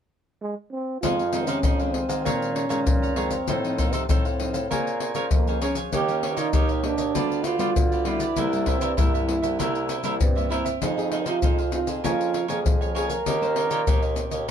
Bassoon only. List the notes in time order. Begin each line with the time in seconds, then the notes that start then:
1.03 F2
1.47 C3
1.63 F2
2.08 G#2
2.24 A#2
2.69 A#2
2.86 A#2
3.49 A2
3.93 C3
4.09 A2
4.52 A2
4.70 A#2
5.14 A#2
5.31 F2
5.92 D#2
6.37 A#2
6.54 D#2
6.98 D#2
7.15 D2
7.58 D2
7.76 D2
8.36 C2
8.82 G2
8.98 C2
9.43 C2
9.60 C2
10.05 C2
10.21 G2
10.83 F2
11.26 C3
11.43 F2
11.87 F2
12.04 F2
12.49 F2
12.65 F2
13.26 D#2
13.70 A#2
13.87 D#2
14.33 D#2